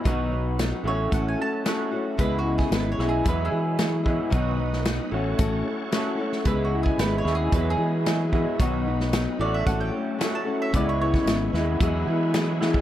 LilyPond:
<<
  \new Staff \with { instrumentName = "Mandolin" } { \time 4/4 \key e \major \tempo 4 = 112 << { r4. cis''8 fis''16 gis''16 a''8 r4 | \tuplet 3/2 { b'8 fis'8 gis'8 b'8 cis''8 gis'8 b'8 gis'4~ } gis'16 r8. | r1 | \tuplet 3/2 { b'8 fis'8 gis'8 b'8 cis''8 gis'8 b'8 gis'4~ } gis'16 r8. |
r4. d''16 e''16 fis''16 g''4 a''8 e''16 | d''16 cis''16 cis''4 r2 r8 | } \\ { r1 | r2 \tuplet 3/2 { r8 e'4~ } e'8 r8 | r1 | r1 |
r1 | r1 | } >> }
  \new Staff \with { instrumentName = "Tonewheel organ" } { \time 4/4 \key e \major r1 | r1 | <dis' fis' b' dis''>4. <cis' fis' a' cis''>2~ <cis' fis' a' cis''>8 | <cis' e' gis' b'>2 <b e' fis' gis'>2 |
<b dis' fis' b'>4. <fis a cis' a'>2~ <fis a cis' a'>8 | <b cis' e' gis'>2 <b e' fis' gis'>2 | }
  \new Staff \with { instrumentName = "Steel-string acoustic guitar" } { \time 4/4 \key e \major <b, dis fis b dis' b'>8 <fis b dis' b'>8 <fis b dis' b'>8 <cis' fis' a'>8 <a cis' fis' a'>8 <cis' fis' a'>8 <a cis' fis' a'>8 <cis' fis' a'>8 | <cis gis b e' gis'>8 <b e' gis'>8 <gis b e' gis'>8 <b e' gis'>8 <e fis b e' gis'>8 <b e' gis'>8 <fis b e' gis'>8 <b e' gis'>8 | <b, dis fis b dis' b'>8 <fis b dis' b'>8 <fis b dis' b'>8 <cis' fis' a'>8 <a cis' fis' a'>8 <cis' fis' a'>8 <a cis' fis' a'>8 <cis' fis' a'>8 | <cis gis b e' gis'>8 <b e' gis'>8 <gis b e' gis'>8 <b e' gis'>8 <e fis b fis' gis'>8 <b fis' gis'>8 <fis b fis' gis'>8 <b fis' gis'>8 |
<b, dis fis b dis' b'>8 <fis b dis' b'>8 <fis b dis' b'>8 <cis' fis' a'>8 <a cis' fis' a'>8 <cis' fis' a'>8 <a cis' fis' a'>8 <cis' fis' a'>8 | <cis gis b e' b'>8 <b e' b'>8 <gis b e' b'>8 <b e' b'>8 <e fis b e' gis'>8 <b e' gis'>8 <fis b e' gis'>8 <b e' gis'>8 | }
  \new Staff \with { instrumentName = "Clean electric guitar" } { \clef bass \time 4/4 \key e \major <b, fis b dis' fis'>4. <a, fis a cis' fis'>4. <a, fis a cis' fis'>4 | <cis e gis b e'>4. <cis e gis b e'>8 <e, b, fis gis b e'>4. <e, b, fis gis b e'>8 | <b, fis b dis' fis'>4. <a, fis a cis' fis'>4. <a, fis a cis' fis'>4 | <cis e gis b e'>4. <cis e gis b e'>8 <e, b, fis gis b e'>4. <e, b, fis gis b e'>8 |
<b, fis b dis' fis'>4. <a, fis a cis' fis'>4. <a, fis a cis' fis'>4 | <cis e gis b e'>4. <cis e gis b e'>8 <e, b, fis gis b e'>4. <e, b, fis gis b e'>8 | }
  \new Staff \with { instrumentName = "Fingered electric bass" } { \clef bass \time 4/4 \key e \major b,,4. a,,8 a,,8 r4. | cis,4 gis,,8 b,,8 e,8 e4. | b,,4. a,,8 a,,8 r4. | cis,4 gis,,8 dis,8 e,8 e4. |
b,,4. a,,8 a,,8 r4. | cis,4 gis,,8 dis,8 e,8 e4. | }
  \new DrumStaff \with { instrumentName = "Drums" } \drummode { \time 4/4 <hh bd>4 <hh sn>4 <hh bd>4 <hh sn>4 | <hh bd>8. <bd sn>16 <hh sn>8 sn8 <hh bd>4 <hh sn>8 bd8 | <hh bd>8. sn16 <hh sn>4 <hh bd>4 <hh sn>8. sn16 | <hh bd>8. bd16 <hh sn>8 sn8 <hh bd>4 <hh sn>8 bd8 |
<hh bd>8. sn16 <hh sn>4 <hh bd>4 <hh sn>4 | <hh bd>8. <bd sn>16 <hh sn>8 sn8 <hh bd>4 <hh sn>8 sn16 bd16 | }
>>